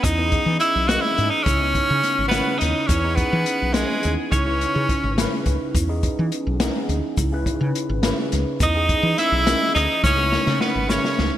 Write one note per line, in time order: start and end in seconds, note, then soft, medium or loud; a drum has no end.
0.03 0.36 E2 medium
0.03 0.59 D#4 loud
0.03 0.26 E4 medium
0.03 0.60 D#5 medium
0.03 kick medium
0.03 closed hi-hat medium
0.03 shaker medium
0.18 0.85 E3 medium
0.18 0.85 B3 medium
0.18 0.85 G#4 medium
0.18 0.86 D#5 medium
0.32 0.55 D#4 medium
0.32 kick medium
0.32 closed hi-hat medium
0.46 0.57 E3 medium
0.59 0.84 C#4 medium
0.59 0.89 E4 loud
0.59 0.88 E5 medium
0.59 closed hi-hat medium
0.75 0.97 B1 medium
0.88 1.46 E3 medium
0.88 1.46 B3 medium
0.88 1.02 F#4 loud
0.88 1.47 G#4 medium
0.88 1.47 D#5 medium
0.88 1.03 F#5 medium
0.88 snare loud
0.88 closed hi-hat medium
0.88 shaker soft
1.01 1.32 E4 loud
1.01 1.32 E5 medium
1.18 1.29 G#2 medium
1.18 1.41 D#4 medium
1.18 closed hi-hat soft
1.30 1.44 D#4 medium
1.30 1.44 D#5 medium
1.43 1.78 C#2 medium
1.43 2.27 C#4 loud
1.43 2.29 C#5 medium
1.43 kick loud
1.43 closed hi-hat medium
1.47 1.70 E4 medium
1.47 shaker soft
1.60 2.27 C#3 medium
1.60 2.28 B3 medium
1.60 2.28 E4 medium
1.60 2.28 C#5 medium
1.75 1.98 D#4 medium
1.75 kick medium
1.75 closed hi-hat medium
1.90 2.01 C#3 medium
2.03 2.27 C#4 medium
2.03 snare soft
2.03 closed hi-hat medium
2.18 2.40 G#1 medium
2.28 2.60 B3 medium
2.28 2.58 B4 medium
2.28 snare medium
2.28 closed hi-hat medium
2.32 2.89 C#3 medium
2.32 2.90 B3 medium
2.32 2.55 C#4 medium
2.32 2.90 E4 medium
2.32 2.90 C#5 medium
2.32 shaker soft
2.58 2.72 D#2 medium
2.58 2.88 D#4 medium
2.58 2.86 D#5 medium
2.58 snare soft
2.58 closed hi-hat medium
2.86 3.21 E2 medium
2.86 3.17 C#4 medium
2.86 3.12 E4 medium
2.86 3.15 C#5 medium
2.86 kick loud
2.86 closed hi-hat medium
2.86 shaker soft
3.03 3.70 E3 medium
3.03 3.70 B3 medium
3.03 3.71 D#4 medium
3.03 3.71 G#4 medium
3.15 3.74 B3 loud
3.15 3.41 D#4 medium
3.15 3.74 B4 medium
3.15 kick medium
3.15 closed hi-hat medium
3.33 3.43 E3 loud
3.46 3.69 C#4 medium
3.46 closed hi-hat medium
3.62 3.83 B1 medium
3.73 4.32 E3 medium
3.73 4.14 G#3 medium
3.73 4.32 B3 medium
3.73 3.98 C#4 medium
3.73 4.33 D#4 medium
3.73 4.32 G#4 medium
3.73 4.33 G#4 medium
3.73 snare loud
3.73 closed hi-hat medium
3.73 shaker soft
4.03 4.15 D#2 medium
4.03 4.27 D#4 medium
4.03 closed hi-hat medium
4.31 4.64 C#2 medium
4.31 5.42 C#4 medium
4.31 4.55 E4 medium
4.31 5.43 C#5 medium
4.31 kick loud
4.31 closed hi-hat medium
4.31 shaker soft
4.46 5.13 C#3 medium
4.46 5.13 C#4 medium
4.46 5.14 E4 medium
4.46 5.14 B4 medium
4.61 4.84 D#4 medium
4.61 closed hi-hat medium
4.61 shaker soft
4.75 4.86 C#3 loud
4.89 5.12 C#4 medium
4.89 kick medium
4.89 closed hi-hat medium
4.89 shaker soft
5.04 5.25 G#1 medium
5.17 5.75 C#3 medium
5.17 5.75 C#4 medium
5.17 5.41 C#4 medium
5.17 5.75 E4 medium
5.17 5.76 B4 medium
5.17 snare loud
5.17 closed hi-hat medium
5.17 shaker soft
5.46 5.57 C#2 medium
5.46 5.70 D#4 medium
5.46 kick medium
5.46 closed hi-hat medium
5.46 shaker soft
5.75 6.07 E2 medium
5.75 5.98 E4 medium
5.75 kick medium
5.75 closed hi-hat medium
5.75 shaker medium
5.88 6.56 E3 medium
5.88 6.56 B3 medium
5.88 6.56 D#4 medium
5.88 6.56 G#4 medium
6.03 6.26 D#4 medium
6.03 kick medium
6.03 closed hi-hat medium
6.19 6.29 E3 medium
6.32 6.55 C#4 medium
6.32 closed hi-hat medium
6.47 6.68 B1 medium
6.59 7.17 E3 medium
6.59 7.18 B3 medium
6.59 6.83 C#4 medium
6.59 7.18 D#4 medium
6.59 7.18 G#4 medium
6.59 snare loud
6.59 closed hi-hat medium
6.59 shaker soft
6.89 7.00 D2 medium
6.89 7.12 D#4 medium
6.89 closed hi-hat medium
7.18 7.50 C#2 medium
7.18 7.41 E4 medium
7.18 kick loud
7.18 closed hi-hat medium
7.18 shaker soft
7.32 7.99 C#3 medium
7.32 7.99 C#4 medium
7.32 8.00 E4 medium
7.32 8.00 B4 medium
7.46 7.69 D#4 medium
7.46 kick medium
7.46 closed hi-hat medium
7.61 7.71 C#3 medium
7.75 7.98 C#4 medium
7.75 closed hi-hat medium
7.89 8.11 G#1 medium
8.02 8.60 C#3 medium
8.02 8.61 C#4 medium
8.02 8.27 C#4 medium
8.02 8.61 E4 medium
8.02 8.62 B4 medium
8.02 snare loud
8.02 closed hi-hat medium
8.02 shaker soft
8.32 8.43 C#2 medium
8.32 8.55 D#4 medium
8.32 snare soft
8.32 closed hi-hat medium
8.60 8.93 E2 medium
8.60 9.20 D#4 loud
8.60 8.84 E4 medium
8.60 9.15 D#5 medium
8.60 kick loud
8.60 closed hi-hat medium
8.60 shaker soft
8.74 9.42 E3 medium
8.74 9.42 B3 medium
8.74 9.42 D#4 medium
8.74 9.43 G#4 medium
8.89 9.12 D#4 medium
8.89 kick medium
8.89 closed hi-hat medium
9.03 9.14 E3 medium
9.18 9.41 C#4 medium
9.18 9.74 E4 loud
9.18 9.76 E5 loud
9.18 snare soft
9.18 closed hi-hat medium
9.32 9.53 B1 medium
9.45 10.03 E3 medium
9.45 10.03 B3 medium
9.45 9.69 C#4 medium
9.45 10.04 D#4 medium
9.45 10.04 G#4 medium
9.45 snare loud
9.45 closed hi-hat medium
9.45 shaker soft
9.74 9.86 D2 medium
9.74 10.01 D#4 loud
9.74 9.98 D#4 medium
9.74 10.03 D#5 medium
9.74 snare soft
9.74 closed hi-hat medium
10.03 10.36 C#2 medium
10.03 10.62 C#4 loud
10.03 10.26 E4 medium
10.03 10.58 C#5 medium
10.03 kick medium
10.03 snare soft
10.03 shaker soft
10.16 10.84 C#3 medium
10.16 10.85 G#3 medium
10.16 10.85 B3 medium
10.16 10.85 E4 medium
10.32 10.55 D#4 medium
10.32 snare medium
10.46 10.58 C#3 loud
10.46 snare medium
10.61 10.91 B3 medium
10.61 10.84 C#4 medium
10.61 10.92 B4 medium
10.61 snare medium
10.75 10.97 G#1 medium
10.88 11.38 C#3 medium
10.88 11.38 G#3 medium
10.88 11.38 B3 medium
10.88 11.32 C#4 medium
10.88 11.12 C#4 medium
10.88 11.38 E4 medium
10.88 11.33 C#5 medium
10.88 snare medium
10.88 shaker soft
11.04 snare medium
11.18 11.29 C#2 medium
11.18 11.38 D#4 medium
11.18 snare medium